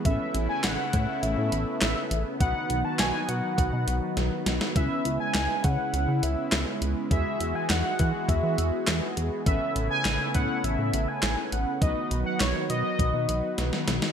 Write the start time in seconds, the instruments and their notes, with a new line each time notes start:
Already playing: analog synth pad B3
0.05 analog synth bass A1, analog synth pad C#3 A3 E4, analog polysynth C#4 A4 B4, soft synth lead E5, kick, closed hi-hat
0.34 analog synth bass A1, closed hi-hat
0.49 soft synth lead G#5
0.64 analog synth bass A1, soft synth lead F#5, snare, clap, closed hi-hat
0.93 analog synth bass A2, kick, closed hi-hat
1.23 analog synth bass A1, soft synth lead E5, closed hi-hat
1.37 analog synth bass A2
1.52 analog synth bass A1, closed hi-hat
1.81 analog synth bass A1, soft synth lead E5, snare, clap, closed hi-hat
2.11 analog synth bass A1, closed hi-hat
2.40 analog synth bass B1, analog synth pad D#3 F#3 F#4, analog polysynth D#4 F#4 B4, soft synth lead F#5, kick, closed hi-hat
2.70 analog synth bass B1, closed hi-hat
2.85 soft synth lead A5
2.99 analog synth bass B1, soft synth lead G#5, snare, clap, closed hi-hat
3.29 analog synth bass B2, soft synth lead F#5, closed hi-hat
3.58 analog synth bass B1, kick, closed hi-hat
3.73 analog synth bass B2
3.88 analog synth bass B1, closed hi-hat
4.17 analog synth bass B1, snare, closed hi-hat
4.46 analog synth bass B1, snare, closed hi-hat
4.61 snare
4.76 analog synth bass C#2, analog synth pad C#3 G#3 E4, analog polysynth C#4 E4 B4, soft synth lead E5, kick, closed hi-hat
5.05 analog synth bass C#2, closed hi-hat
5.20 soft synth lead G#5
5.35 analog synth bass C#2, snare, clap, closed hi-hat
5.64 analog synth bass C#3, soft synth lead F#5, kick, closed hi-hat
5.93 analog synth bass C#2, closed hi-hat
6.08 analog synth bass C#3
6.23 analog synth bass C#2, soft synth lead E5, closed hi-hat
6.52 analog synth bass C#2, snare, clap, closed hi-hat
6.82 analog synth bass C#2, closed hi-hat
7.11 analog synth bass E2, analog synth pad E3 B3 F#4, analog polysynth E4 F#4 G#4, soft synth lead E5, kick, closed hi-hat
7.40 analog synth bass E2, closed hi-hat
7.55 soft synth lead G#5
7.70 analog synth bass E2, soft synth lead F#5, snare, clap, closed hi-hat
7.99 analog synth bass E3, kick, closed hi-hat
8.29 analog synth bass E2, soft synth lead E5, kick, closed hi-hat
8.43 analog synth bass E3
8.58 analog synth bass E2, closed hi-hat
8.87 analog synth bass E2, snare, clap, closed hi-hat
9.17 analog synth bass E2, closed hi-hat
9.46 analog synth bass A1, analog synth pad C#3 A3 E4, analog polysynth C#4 A4 B4, soft synth lead E5, kick, closed hi-hat
9.76 analog synth bass A1, closed hi-hat
9.91 soft synth lead G#5
10.05 analog synth bass A1, snare, clap, closed hi-hat
10.34 analog synth bass A2, soft synth lead F#5, kick, closed hi-hat
10.64 analog synth bass A1, soft synth lead E5, closed hi-hat
10.79 analog synth bass A2
10.93 analog synth bass A1, closed hi-hat
11.08 soft synth lead G#5
11.23 analog synth bass A1, snare, clap, closed hi-hat
11.52 analog synth bass A1, soft synth lead F#5, closed hi-hat
11.82 analog synth bass B1, analog synth pad D#3 F#3 F#4, analog polysynth D#4 F#4 B4, soft synth lead D#5, kick, closed hi-hat
12.11 analog synth bass B1, closed hi-hat
12.26 soft synth lead F#5
12.40 analog synth bass B1, soft synth lead C#5, snare, clap, closed hi-hat
12.70 analog synth bass B2, soft synth lead D#5, closed hi-hat
12.99 analog synth bass B1, kick, closed hi-hat
13.14 analog synth bass B2
13.29 analog synth bass B1, closed hi-hat
13.58 analog synth bass B1, snare, closed hi-hat
13.73 snare
13.87 analog synth bass B1, snare, closed hi-hat
14.02 snare